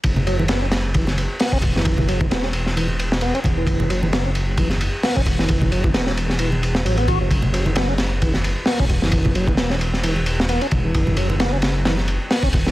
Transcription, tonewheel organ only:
0.27 F#3
0.39 E3
0.49 B3
0.62 C#4
0.95 E3
1.40 B3
1.53 C#4
1.75 E3
2.08 F#3
2.21 E3
2.30 B3
2.43 C#4
2.76 E3
3.22 B3
3.34 C#4
3.57 E3
3.90 F#3
4.02 E3
4.13 B3
4.25 C#4
4.58 E3
5.04 B3
5.16 C#4
5.39 E3
5.72 F#3
5.84 E3
5.94 B3
6.07 C#4
6.39 E3
6.85 F#3
6.98 B3
7.08 F#4
7.21 F#3
7.53 F#3
7.66 E3
7.76 B3
7.88 C#4
8.22 E3
8.67 B3
8.79 C#4
9.02 E3
9.35 F#3
9.48 E3
9.58 B3
9.70 C#4
10.03 E3
10.49 B3
10.62 C#4
10.84 E3
11.17 F#3
11.30 E3
11.40 B3
11.53 C#4
11.85 E3
12.31 B3
12.43 C#4
12.66 E3

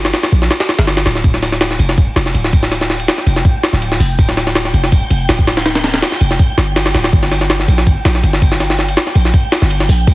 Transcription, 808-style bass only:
Already playing: G1
0.32 A#1
0.79 G1
1.06 D1
1.24 D1
1.79 F1
1.98 D1
2.16 F1
2.34 D1
3.26 F1
3.73 D1
4.00 F1
4.19 D1
4.74 F1
4.92 D1
5.10 F1
5.29 D1
6.21 F1
6.58 G1
6.94 D1
7.13 G1
7.68 A#1
7.87 G1
8.05 A#1
8.23 G1
9.15 A#1
9.62 G1
9.89 A#1
10.07 C2

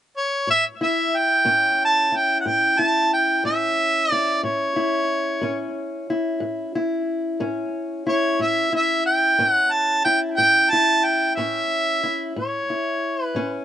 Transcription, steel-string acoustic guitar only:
0.47 A2
0.81 E4
1.45 A2 C#4
2.12 E4
2.46 A2
2.79 E4
3.44 A2 C#4
4.12 E4
4.43 A2
4.76 E4
5.41 A2 C#4
6.10 E4
6.40 A2
6.75 E4
7.40 A2 C#4
8.07 E4
8.39 A2
8.73 E4
9.39 A2 C#4
10.05 E4
10.38 A2
10.73 E4
11.37 A2 C#4
12.03 E4
12.36 A2
12.70 E4
13.35 A2 C#4

